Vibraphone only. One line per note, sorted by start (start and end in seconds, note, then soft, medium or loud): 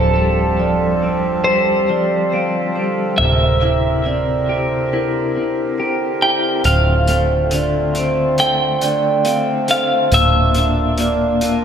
0.00 0.15 C5 medium
0.60 1.03 D5 medium
1.02 1.89 C5 soft
1.89 2.32 D5 medium
2.33 2.76 F5 medium
2.75 3.62 C5 soft
3.62 4.06 E5 soft
4.06 4.49 D5 medium
4.50 4.93 C5 soft
4.93 5.79 A#4 medium
5.78 6.64 C5 soft
6.65 7.07 C5 medium
7.08 7.52 C5 soft
7.52 7.96 D5 soft
7.94 8.82 C5 medium
8.82 9.25 D5 medium
9.24 9.68 F5 medium
9.68 10.55 C5 soft
10.55 10.98 E5 soft
10.98 11.42 D5 medium
11.41 11.65 A#4 medium